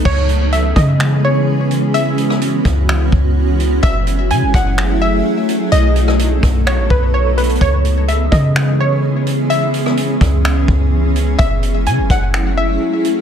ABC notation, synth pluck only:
X:1
M:4/4
L:1/8
Q:1/4=127
K:C#m
V:1 name="Synth pluck"
c2 e d2 c3 | e8 | e2 g f2 e3 | d4 c B c B |
c2 e d2 c3 | e8 | e2 g f2 e3 |]